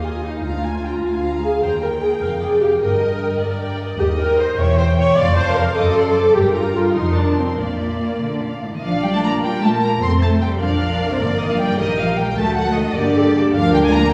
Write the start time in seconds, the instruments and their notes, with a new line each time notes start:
Already playing: double bass section D#2, cello section D#2, violin section D#5
0.04 viola section F4, violin section G#5
0.23 viola section D#4, violin section F5
0.43 double bass section D2, cello section D2, viola section F4, violin section F5 A#5
0.64 violin section G#5
0.84 violin section G5 A#5
1.04 cello section D2, violin section F5 G#5
1.25 violin section A#5
1.43 viola section G#4, violin section G#5
1.62 cello section D#2, double bass section D#2, viola section C5, violin section G5 A#5
1.82 viola section A#4, violin section G5
2.02 viola section G#4, violin section A#5
2.21 double bass section F1, cello section F2, viola section A#4, violin section F5
2.41 viola section G#4, violin section D5
2.61 viola section G4, violin section F5
2.80 double bass section G1, cello section G2, viola section A#4, violin section D#5 G5
3.00 violin section D#5
3.19 violin section G5
3.39 cello section G2, violin section D5 D#5
3.59 violin section G5
3.80 violin section D#5
3.98 double bass section D#2, cello section D#2, viola section G4, violin section D#5
4.19 viola section A#4, violin section G5
4.38 viola section C5, violin section D#5
4.58 double bass section E1, cello section E2, viola section C#5, violin section E5 G5
4.78 viola section C5, violin section G5
4.98 viola section C#5, violin section E5
5.17 double bass section F1, cello section F2, viola section D5, violin section F5 C6
5.37 viola section C5, violin section A5
5.56 viola section A#4, violin section C6
5.75 double bass section F#1, cello section F#2, viola section A4, violin section D#5 D6
5.95 violin section D5 C6
6.15 violin section C5 D6
6.35 double bass section G1, cello section G2, viola section G4, violin section A#4 G5
6.55 viola section F4, violin section A#5
6.76 violin section G5
6.96 double bass section F1, cello section F2, viola section D#4, violin section C6
7.16 viola section D4, violin section A5
7.37 viola section C4, violin section C6
7.57 double bass section A#1, cello section A#2, viola section A#3, violin section D5 F5
7.80 violin section D5
7.99 violin section F5
8.21 cello section D3, violin section D5
8.42 cello section A#2, violin section F5
8.63 cello section A2, violin section D5
8.73 cello section D#3, violin section D#5
8.82 double bass section A#1, cello section F3, viola section D4 F4, violin section D5 F5
9.03 cello section G3, violin section G5
9.13 cello section A3, violin section A5
9.23 cello section A#3, violin section A#5
9.41 double bass section A#2, cello section G3, viola section A#3, violin section A#4 G5
9.62 cello section A3, violin section A5
9.83 cello section A#3, violin section A#5
10.01 double bass section F1, viola section C4 A4, cello section C4, violin section C5 C6
10.21 cello section A3, violin section A5
10.41 cello section G3, violin section G5
10.60 double bass section A#1, cello section F3, viola section D4 A#4, violin section D5 F5
11.10 cello section C3, violin section C5
11.20 double bass section G1, cello section D3, viola section A#3, violin section D5
11.40 cello section D#3, violin section D#5
11.50 cello section F3, violin section F5
11.60 cello section G3, violin section G5
11.78 double bass section A#1, cello section D#3, viola section G3 A#4, violin section A#4 D#5
11.99 cello section F3, violin section F5
12.18 cello section G3, violin section G5
12.37 double bass section D2, viola section A3 F#4, cello section A3, violin section A4 A5
12.57 cello section F#3, violin section F#5
12.76 cello section D#3, violin section D#5
12.95 double bass section G2, cello section D3, viola section A#3 G4, violin section A#4 D5
13.16 violin section G4, viola section A4
13.36 viola section G4, violin section A4
13.54 double bass section D2, cello section F3, viola section D4 F4, violin section F5
13.58 violin section A#4
13.74 cello section G3, violin section G5
13.85 cello section G#3, violin section G#5
13.94 cello section A#3, violin section A#5